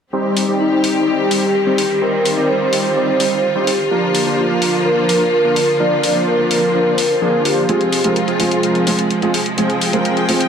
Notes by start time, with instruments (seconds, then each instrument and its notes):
0.13 string section D#3 G3 C4 G4, supersaw synth G3 C4 D#4 G4 C5
0.37 open hi-hat
0.48 supersaw synth G3 C4 D#4 G4 D5
0.60 vibraphone D#4
0.72 supersaw synth G3 C4 D#4 G4 C5
0.84 open hi-hat
1.07 supersaw synth G3 C4 D#4 G4 D5, vibraphone G4
1.31 supersaw synth G3 C4 D#4 G4 C5, open hi-hat
1.55 vibraphone G4
1.66 supersaw synth G3 C4 D#4 G4 C5
1.78 open hi-hat
2.02 supersaw synth G3 C4 D#4 G4 C5, string section F4, vibraphone A#4
2.25 open hi-hat
2.37 supersaw synth G3 C4 D#4 G4 D5
2.49 vibraphone C5
2.61 supersaw synth G3 C4 D#4 G4 C5
2.73 open hi-hat
2.96 supersaw synth G3 C4 D#4 G4 D5, vibraphone C5
3.20 supersaw synth G3 C4 D#4 G4 C5, open hi-hat
3.55 supersaw synth G3 C4 D#4 G4 C5
3.67 vibraphone G4, open hi-hat
3.91 string section D3 F3 A#3, supersaw synth F3 A#3 D4 F4 A#4
4.15 open hi-hat
4.26 supersaw synth F3 A#3 D4 F4 C5
4.31 vibraphone G4
4.38 vibraphone F4
4.50 supersaw synth F3 A#3 D4 F4 A#4
4.62 open hi-hat
4.85 supersaw synth F3 A#3 D4 F4 C5, vibraphone A#4
5.09 supersaw synth F3 A#3 D4 F4 A#4, open hi-hat
5.33 vibraphone A#4
5.44 supersaw synth F3 A#3 D4 F4 A#4
5.56 open hi-hat
5.80 supersaw synth F3 A#3 D4 F4 A#4, string section C4, vibraphone D5
6.03 open hi-hat
6.15 supersaw synth F3 A#3 D4 F4 C5
6.27 vibraphone A#4
6.39 supersaw synth F3 A#3 D4 F4 A#4
6.51 open hi-hat
6.74 supersaw synth F3 A#3 D4 F4 C5, vibraphone A#4
6.98 open hi-hat
7.21 supersaw synth F3 A#3 D4 F4 G#4
7.45 supersaw synth F3 A#3 D4 F4 C5, vibraphone G4, open hi-hat
7.68 string section C3 F3 G#3 F4, felt piano F3 G#3 C4 F4, supersaw synth F3 G#3 C4 F4 G#4, closed hi-hat
7.81 closed hi-hat
7.92 open hi-hat
8.04 felt piano F3 G#3 C4 F4, supersaw synth F3 G#3 C4 F4 A#4, closed hi-hat
8.16 closed hi-hat
8.28 supersaw synth F3 G#3 C4 F4 G#4, closed hi-hat
8.39 felt piano F3 G#3 C4 F4, open hi-hat
8.51 closed hi-hat
8.63 supersaw synth F3 G#3 C4 F4 A#4, closed hi-hat
8.75 closed hi-hat
8.86 felt piano F3 G#3 C4 F4, supersaw synth F3 G#3 C4 F4 G#4, open hi-hat
8.99 closed hi-hat
9.11 closed hi-hat
9.22 felt piano F3 G#3 C4 F4, supersaw synth F3 G#3 C4 F4 G#4, closed hi-hat
9.34 open hi-hat
9.46 closed hi-hat
9.57 felt piano F3 G#3 C4 F4, supersaw synth F3 G#3 C4 F4 G#4, string section G5, closed hi-hat
9.70 closed hi-hat
9.81 open hi-hat
9.93 felt piano F3 G#3 C4 F4, supersaw synth F3 G#3 C4 F4 A#4, closed hi-hat
10.05 closed hi-hat
10.17 supersaw synth F3 G#3 C4 F4 G#4, closed hi-hat
10.28 felt piano F3 G#3 C4 F4, open hi-hat
10.41 closed hi-hat